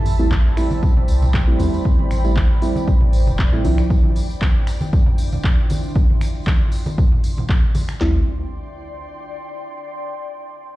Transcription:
Already playing: sub bass A1, ambient pad C5 D5 G5 A5 B5 E6, sub drop
0.06 open hi-hat, tambourine
0.14 ambient pad G5
0.19 synth stab G3 A3 C4 E4, tambourine
0.31 kick, clap, tambourine, high conga
0.57 synth stab G3 A3 C4 E4, finger snap, open hi-hat, tambourine
0.71 tambourine, high conga
0.83 kick, tambourine
0.89 ambient pad B5
0.96 low conga
1.08 sub bass C2, open hi-hat, tambourine
1.22 tambourine, high conga, low conga
1.34 kick, clap
1.48 sub bass A1, synth stab G3 A3 C4 E4
1.59 sub bass E2, synth stab G3 A3 C4 E4, open hi-hat, tambourine, high conga
1.74 tambourine
1.85 sub bass A1, kick
1.99 high conga
2.11 finger snap, open hi-hat, tambourine
2.25 synth stab G3 A3 C4 E4, tambourine
2.36 kick, clap, tambourine, high conga
2.62 synth stab G3 A3 C4 E4, open hi-hat, tambourine
2.76 tambourine, high conga
2.88 sub bass A1, kick, tambourine
3.01 sub bass A1, low conga
3.13 open hi-hat, tambourine
3.27 sub bass E1, tambourine, high conga, low conga
3.39 kick, clap, tambourine
3.53 sub bass A2, synth stab G3 A3 C4 E4
3.64 sub bass C2, synth stab F3 C4 D4 E4, open hi-hat, tambourine, high conga
3.78 finger snap, tambourine
3.90 ambient pad D4 E5 F5 C6, kick, tambourine
4.03 high conga
4.16 open hi-hat, tambourine
4.30 tambourine
4.42 kick, clap, tambourine, high conga
4.67 finger snap, open hi-hat, tambourine
4.81 tambourine, high conga
4.93 kick, tambourine
5.06 low conga
5.18 ambient pad C6, open hi-hat, tambourine
5.32 tambourine, high conga, low conga
5.44 kick, clap, tambourine
5.70 open hi-hat, tambourine, high conga
5.83 tambourine
5.95 kick, tambourine
6.10 high conga
6.21 finger snap, open hi-hat, tambourine
6.35 tambourine
6.47 kick, clap, tambourine, high conga
6.72 open hi-hat, tambourine
6.86 tambourine, high conga
6.98 kick, tambourine
7.12 low conga
7.24 open hi-hat, tambourine
7.37 tambourine, high conga, low conga
7.49 kick, clap, tambourine
7.75 open hi-hat, tambourine, high conga
7.89 finger snap, tambourine
8.00 sub bass A1, synth stab G3 A3 C4 E4, ambient pad D5, snare, clap, floor tom
8.09 ambient pad G5
8.17 ambient pad C6

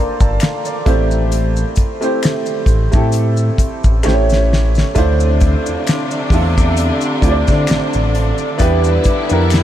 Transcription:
Already playing: upright piano A#3 D4 F4 A4 C5 D5 A#5 C6
0.20 analog synth bass G1, upright piano A5, kick, maracas
0.40 upright piano F5, finger snap, snare, closed hi-hat, maracas
0.65 upright piano D5, maracas
0.86 analog synth bass A1, upright piano A3 C4 E4 G4 C5, kick, closed hi-hat
1.11 maracas
1.32 closed hi-hat, maracas
1.56 maracas
1.76 kick, closed hi-hat, maracas
2.01 upright piano A3 C4 E4 G4 C5, maracas
2.23 finger snap, snare, closed hi-hat, maracas
2.46 maracas
2.66 analog synth bass A1, kick, closed hi-hat, maracas
2.92 analog synth bass A2, upright piano A3 C4 E4 G4 A4, kick, maracas
3.12 closed hi-hat, maracas
3.37 maracas
3.58 analog synth bass A1, kick, closed hi-hat, maracas
3.84 analog synth bass A1, kick, maracas
4.03 analog synth bass A1, upright piano A3 C#4 E4 G4 C5, finger snap, maracas
4.08 snare
4.13 upright piano C#5
4.30 snare, maracas
4.53 snare
4.75 snare, maracas
4.95 analog synth bass D2, string section C3 D3 D4, upright piano A3 D4 E4 F4 C5, kick, closed hi-hat, maracas
5.20 maracas
5.40 kick, closed hi-hat, maracas
5.66 analog synth bass E2, maracas
5.87 finger snap, snare, closed hi-hat, maracas
6.11 maracas
6.30 analog synth bass E2, upright piano A3 D4 E4 F4, kick, open hi-hat, maracas
6.34 upright piano A4
6.58 kick, maracas
6.77 closed hi-hat, maracas
7.01 maracas
7.21 analog synth bass D2, upright piano A3 D4 E4 F4 C5, kick, closed hi-hat, maracas
7.31 upright piano D5
7.47 analog synth bass D3, kick, maracas
7.51 snare
7.67 analog synth bass A1, finger snap, snare, closed hi-hat, maracas
7.93 analog synth bass A1, maracas
8.15 closed hi-hat
8.38 maracas
8.58 analog synth bass E2, string section D3 G3 E4, upright piano B3 D4 E4 G4 B4, kick, closed hi-hat, maracas
8.84 maracas
9.04 kick, closed hi-hat, maracas
9.29 analog synth bass F2, upright piano B3 D4 E4 G4 A#4, maracas
9.50 finger snap, snare, closed hi-hat, maracas

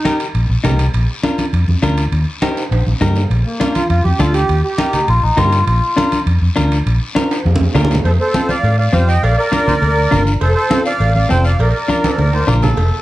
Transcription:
Already playing: accordion D#4
0.05 clean electric guitar D#4 G4 A#4, high conga, high timbale, short guiro
0.20 high timbale, short guiro
0.35 fingered electric bass A#1, high conga, high timbale, long guiro
0.49 fingered electric bass A#1
0.64 fingered electric bass C2, clean electric guitar D#4 G4 A#4, high conga, low conga, high timbale, low timbale, short guiro
0.79 high timbale, short guiro
0.94 fingered electric bass A#1, high conga, high timbale, long guiro
1.23 clean electric guitar D4 F4 A#4, high conga, high timbale, short guiro
1.38 high conga, high timbale, short guiro
1.53 fingered electric bass F2, high conga, high timbale, long guiro
1.68 fingered electric bass F2, high conga
1.82 fingered electric bass D2, clean electric guitar D4 F4 A#4, high conga, high timbale, short guiro
1.97 high timbale, short guiro
2.12 fingered electric bass D#2, high conga, high timbale, long guiro
2.42 clean electric guitar D#4 G4 A#4, high conga, high timbale, short guiro
2.57 high timbale, short guiro
2.71 fingered electric bass A#1, high conga, high timbale, long guiro
2.86 fingered electric bass A#1, high conga
3.01 fingered electric bass G2, clean electric guitar D#4 G4 A#4, high conga, low conga, low timbale, short guiro
3.16 low timbale, short guiro
3.30 fingered electric bass A#1, high conga, high timbale, long guiro
3.46 accordion A#3
3.60 clean electric guitar D4 F4 A#4, high conga, high timbale, short guiro
3.74 accordion F4, high conga, high timbale, short guiro
3.89 fingered electric bass F2, accordion F4, high conga, high timbale, long guiro
4.04 fingered electric bass F2, accordion G4, high conga
4.19 fingered electric bass D2, clean electric guitar D4 F4 A4, accordion F4, high conga, high timbale, short guiro
4.34 accordion G4, high timbale, short guiro
4.49 fingered electric bass D#2, high conga, high timbale, long guiro
4.64 accordion G4
4.78 clean electric guitar D#4 G4 A#4, high conga, high timbale, short guiro
4.93 melodica D#4, low conga, high timbale, short guiro
5.08 fingered electric bass A#1, melodica F4, high conga, high timbale, long guiro
5.22 fingered electric bass A#1, melodica D#4
5.37 fingered electric bass G2, clean electric guitar D#4 G4 A#4, melodica F4, high conga, low conga, high timbale, low timbale, short guiro
5.53 high timbale, short guiro
5.66 fingered electric bass A#1, melodica F4, high conga, high timbale, long guiro
5.97 clean electric guitar D4 F4 A#4, high conga, high timbale, short guiro
6.12 high conga, high timbale, short guiro
6.26 fingered electric bass F2, high conga, high timbale, long guiro
6.42 fingered electric bass F2
6.56 fingered electric bass D2, clean electric guitar D4 F4 A#4, high conga, high timbale, short guiro
6.72 high timbale, short guiro
6.86 fingered electric bass A#1, high conga, high timbale, long guiro
7.15 clean electric guitar D4 F4 A#4, high conga, high timbale, short guiro
7.31 high timbale, short guiro
7.45 fingered electric bass F2, high conga, low timbale, long guiro
7.56 high conga
7.61 fingered electric bass F2, low timbale
7.75 fingered electric bass D2, clean electric guitar D4 F4 A#4, low conga, low timbale, short guiro
7.85 low conga
7.91 low timbale, short guiro
7.95 low conga
8.04 fingered electric bass F2, accordion A4 C5, cowbell, high conga, long guiro
8.20 accordion A4 C5
8.34 clean electric guitar C4 F4 A4, high conga, short guiro
8.49 accordion D5 F5, high conga, short guiro
8.63 fingered electric bass A2, cowbell, high conga, long guiro
8.78 accordion D5 F5
8.93 fingered electric bass F2, clean electric guitar C4 F4 G4, accordion C5 F5, high conga, short guiro
9.07 accordion D#5 G5, short guiro
9.22 fingered electric bass A#1, accordion D5 F5, cowbell, high conga, long guiro
9.37 accordion A#4 D5
9.52 clean electric guitar D4 F4 A#4, high conga, short guiro
9.67 melodica C5, high conga, low conga, short guiro
9.82 fingered electric bass D2, melodica A#4, cowbell, high conga, long guiro
10.11 fingered electric bass G1, clean electric guitar D4 F4 A#4, melodica A#4, high conga, low conga, short guiro
10.27 short guiro
10.40 fingered electric bass F1, accordion A4 C5, cowbell, high conga, long guiro
10.54 accordion A4 C5
10.70 clean electric guitar C4 F4 A4, high conga, short guiro
10.85 accordion D5 F5, short guiro
11.00 fingered electric bass A1, cowbell, high conga, long guiro
11.15 accordion D5 F5, high conga
11.29 fingered electric bass F1, clean electric guitar C4 F4 A4, accordion C5 G5, high conga, short guiro
11.44 accordion D5 F5, short guiro
11.59 fingered electric bass A#1, accordion A#4 D5, cowbell, high conga, long guiro
11.88 clean electric guitar D4 F4 A#4, melodica A#4, high conga, short guiro
12.04 melodica A4, high conga, high timbale, short guiro
12.18 fingered electric bass D2, melodica A#4, cowbell, low conga, long guiro
12.33 melodica C5, high timbale
12.47 fingered electric bass A#1, clean electric guitar D4 F4 A#4, melodica D5, low conga, short guiro
12.62 melodica A4, low conga, low timbale, short guiro
12.77 fingered electric bass F1, cowbell, high conga, long guiro

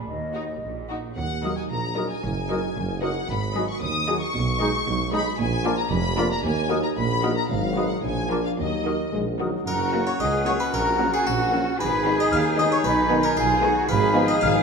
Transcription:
0.07 cello section D#2, double bass section D#2, flute D#5
0.34 viola section D#4, violin section F#4 A#4
0.63 double bass section A#1, cello section A#2
0.89 viola section D#4, violin section F#4 A#4
1.17 tuba D#2, cello section D#2, double bass section D#2, violin section F#5
1.43 viola section F#3 D#4, french horn section A#3 D#4, clarinet F#4, violin section A#4 D#5, cor anglais A#4, flute D#6
1.57 violin section G#5
1.71 tuba A#1, double bass section A#1, cello section A#2, violin section A#5
1.97 viola section F#3 D#4, french horn section A#3 D#4, clarinet F#4, violin section A#4 D#5, cor anglais A#4, flute D#6
2.11 violin section G#5
2.24 tuba F#1, double bass section F#1, cello section F#2
2.49 viola section F#3 D#4, french horn section A#3 D#4, clarinet F#4, violin section A#4 D#5, cor anglais A#4, flute D#6
2.76 tuba F#1, double bass section F#1, cello section F#2
3.02 viola section F#3 D#4, french horn section A#3 D#4, clarinet F#4, violin section A#4 D#5 F#5, cor anglais A#4, flute D#6
3.29 tuba G#1, double bass section G#1, cello section G#2, violin section B5
3.55 french horn section F#3 D#4, viola section F#3 D#4, clarinet F#4, violin section G#4 D#5, cor anglais G#4, flute D#6
3.69 violin section C#6
3.82 tuba D#2, cello section D#2, double bass section D#2, violin section D#6
4.08 viola section F#3 D#4, french horn section F#3 D#4, clarinet F#4, violin section G#4 D#5, cor anglais G#4, flute D#6
4.21 violin section C#6
4.34 tuba B1, double bass section B1, cello section B2
4.60 viola section G#3 D#4, french horn section G#3 D#4, clarinet D#4, violin section G#4 D#5, cor anglais G#4, flute D#6
4.87 tuba B1, double bass section B1, cello section B2
5.13 french horn section G#3 D#4, viola section G#3 D#4, clarinet D#4, cor anglais G#4, violin section G#4 D#5 B5, flute D#6
5.39 tuba A#1, double bass section A#1, cello section A#2, violin section G#5
5.65 french horn section F3 D4, viola section A#3 D4, clarinet F4, violin section F4 A#4, cor anglais A#4, flute D6
5.79 violin section A#5
5.91 tuba F1, double bass section F1, cello section F2, violin section B5
6.17 french horn section F3 D4, viola section A#3 D4, clarinet F4, violin section F4 A#4, cor anglais A#4, flute D6
6.32 violin section A#5
6.44 tuba D#2, cello section D#2, double bass section D#2, violin section G#5
6.70 french horn section F#3 D#4, viola section A#3 D#4, clarinet F#4, violin section F#4 A#4, cor anglais A#4, flute D#6
6.83 violin section A#5
6.96 tuba A#1, double bass section A#1, cello section A#2, violin section B5
7.22 french horn section F#3 D#4, viola section A#3 D#4, violin section F#4 A#4, clarinet F#4, cor anglais A#4, flute D#6
7.36 violin section A#5
7.49 tuba G#1, double bass section G#1, cello section G#2, french horn section F#3 D#4, violin section F5
7.76 viola section G#3 D#4, violin section F#4 B4, clarinet F#4, cor anglais B4, flute D#6
7.90 violin section F#5
8.03 tuba A#1, double bass section A#1, cello section A#2, french horn section F3 D4, violin section G#5
8.30 viola section F3 D4, violin section F4 A#4, clarinet F4, cor anglais A#4, flute D6
8.45 violin section F5
8.58 tuba D#2, cello section D#2, double bass section D#2, french horn section F#3 D#4, violin section D#5
8.85 viola section D#3 D#4, violin section F#4 A#4, clarinet F#4, cor anglais A#4, flute D#6
9.12 tuba A#1, double bass section A#1, cello section A#2, french horn section G#3
9.39 viola section D#3 D#4, french horn section F#3, violin section F#4 A#4, clarinet F#4, cor anglais A#4, flute D#6
9.67 tuba F#1, double bass section F#2, clarinet C#4, cello section F#4, violin section A#4, harpsichord A#4, cor anglais F#5, flute A#5
9.92 french horn section F#3 F#4, viola section A#3 C#4, violin section F#4 A#4
10.07 harpsichord C#5, violin section C#5, flute C#6
10.20 tuba C#2, double bass section C#2, cello section G#4, harpsichord D#5, violin section D#5, flute D#6
10.46 french horn section F#3 F#4, viola section A#3 C#4, violin section F#4 A#4 C#5, harpsichord C#5, flute C#6
10.60 harpsichord B4, violin section B4, flute B5
10.73 tuba A#1, double bass section A#1, cello section F#4, violin section A#4, harpsichord A#4, flute A#5
10.99 french horn section F#3 F#4, viola section A#3 C#4, violin section F#4
11.13 violin section G#4, harpsichord G#4, flute G#5
11.25 tuba A#1, double bass section A#1, violin section F#4, harpsichord F#4, flute F#5
11.52 french horn section F#3 F#4, viola section A#3 C#4, violin section F#4
11.79 tuba G#1, double bass section G#1, clarinet D#4, cello section G#4, violin section B4, harpsichord B4, cor anglais G#5, flute B5
12.05 viola section D#3 B3, french horn section G#3 D#4, violin section D#4 G#4
12.19 violin section D#5, harpsichord D#5, flute D#6
12.32 double bass section D#2, tuba D#2, violin section F5, harpsichord F5, flute F6
12.58 viola section D#3 B3, french horn section G#3 D#4, violin section D#4 G#4 D#5, harpsichord D#5, flute D#6
12.71 violin section C#5, harpsichord C#5, flute C#6
12.84 tuba B1, double bass section B1, cello section D#4, violin section B4, harpsichord B4, flute B5
13.10 viola section D#3 B3, french horn section G#3 D#4, violin section D#4 G#4
13.23 harpsichord A#4, violin section A#4, flute A#5
13.36 tuba B1, double bass section B1, cello section F4, violin section G#4, harpsichord G#4, flute G#5
13.63 viola section D#3 B3, french horn section G#3 D#4, violin section D#4 G#4, cello section F#4
13.89 tuba G#1, double bass section G#1, french horn section F3 D#4, clarinet D#4, cello section G#4, harpsichord B4, violin section B4, cor anglais F5, flute B5
14.15 viola section F3 B3, violin section D#4 F4
14.28 violin section D#5, harpsichord D#5, flute D#6
14.41 tuba G#1, double bass section G#1, harpsichord F5, violin section F5, flute F6

